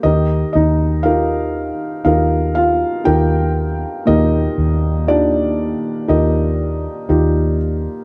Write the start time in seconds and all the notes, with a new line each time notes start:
0.03 D#2 D#3 D#4 G4 A#4 D#5
0.53 D#2 D#4 D#5
1.03 D#4 F4 G4 A#4 F5
2.05 D#2 D#4 F4 G4 A#4 F5
2.55 F4 F5
3.04 D#2 D#4 F4 G4 A#4 G5
4.06 D#2 A#2 D#4 G4 A#4 D#5
4.58 D#2
5.07 D#3 D4 F4 G4 D5
6.08 D#2 D#4 F4 G4 A#4 D#5
7.09 D#2 D#4 F4 G4